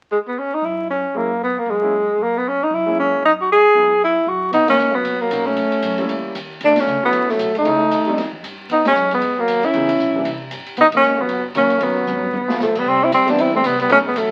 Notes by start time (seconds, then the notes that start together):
0.12 G#3
0.28 B3
0.38 C#4
0.54 D#4
0.62 F#2 E4
0.90 C#4
1.14 F#2 G#3 A#3 C#4 E4
1.43 B3
1.58 A#3
1.66 F#2
1.70 G#3
1.82 G#3 A#3 C#4 E4
2.18 F#2
2.23 A#3
2.37 B3
2.48 C#4
2.64 D#4
2.70 F#2 E4
2.86 G#3 A#3 C#4 E4
2.99 C#4
3.22 F#2 D#4
3.41 F#4
3.52 G#4
3.74 F#2 G#3 B3 D#4 E4
4.04 E4
4.27 F#2 F#4
4.52 B2 B3 D#4, kick, ride
4.67 A#3 C#4, snare, ride
4.79 G#2, hi-hat pedal
4.94 F#3 B3
5.05 A#2, kick, ride
5.20 F#3 A#3
5.30 B2 F#3 A#3 C#4 D#4, kick, hi-hat pedal, ride
5.46 A3 C#4
5.57 A2, kick, ride
5.72 ride
5.82 F#2, kick, hi-hat pedal, ride
5.98 G3 A#3 C#4 E4, ride
6.09 kick, ride
6.35 D#2, kick, hi-hat pedal, ride
6.61 D2 A3, kick, ride
6.65 D4
6.70 C#2
6.76 A1 A3, snare, ride
6.80 C#4
6.86 C#2, hi-hat pedal
7.03 F#3 A3 B3 C#4 E4
7.13 A1, kick, ride
7.29 F#3 A3, muted upright bass stroke, snare
7.39 B1, kick, hi-hat pedal, ride
7.55 A3 D#4, ride
7.65 C#2 G#3 A3 C#4 E4, kick, ride
7.91 D#2, kick, hi-hat pedal, ride
8.06 G3 A3 C4 D4
8.17 F2, kick, snare, ride
8.33 kick
8.43 G2, kick, hi-hat pedal, ride
8.69 E2 B3 D#4, kick, ride
8.85 G#3 C#4, snare, ride
8.95 F#2, hi-hat pedal
9.11 G#3 B3, ride
9.21 G#2, kick, ride
9.37 F#3 A#3
9.48 D#2, kick, hi-hat pedal, ride
9.63 C#4 E4, ride
9.74 C#2 E3 G#3 B3 D#4, kick, ride
9.89 ride
9.99 B1, kick, hi-hat pedal
10.14 E3 G3 A#3 D4
10.25 C2, kick, ride
10.51 G1, kick, hi-hat pedal, ride
10.66 muted upright bass stroke, ride
10.77 B1 B3, kick, ride
10.81 D#4
10.92 A#3, kick, ride
10.96 C#4
11.02 G#1, hi-hat pedal
11.19 F#3 B3, kick
11.29 F#1, kick, ride
11.55 B1 D#3 F#3 A#3 C#4, kick, hi-hat pedal, ride
11.70 ride
11.81 D#2 D#3 F#3 B3 C#4 A#4, kick, ride
12.07 G#1, hi-hat pedal, high tom
12.22 high tom
12.33 G1, high tom
12.48 F3 A3 B3 F4, snare
12.60 B1 F3 A3, snare, hi-hat pedal
12.75 G3 B3, kick, crash
12.86 C2 G3 C4, kick
13.03 C4 E4
13.12 D2 G3 C4, kick, hi-hat pedal, ride
13.26 E3 G3 B3 C4 D4, ride
13.38 E2 C4 E4, kick, ride
13.54 A3 C4
13.64 C2 G3 B3, kick, hi-hat pedal, ride
13.80 G3 B3, ride
13.89 B1 F#3 A3 B3 C#4 D#4, kick, ride
14.05 G#3 B3
14.16 A1 F#3 A3, kick, hi-hat pedal, ride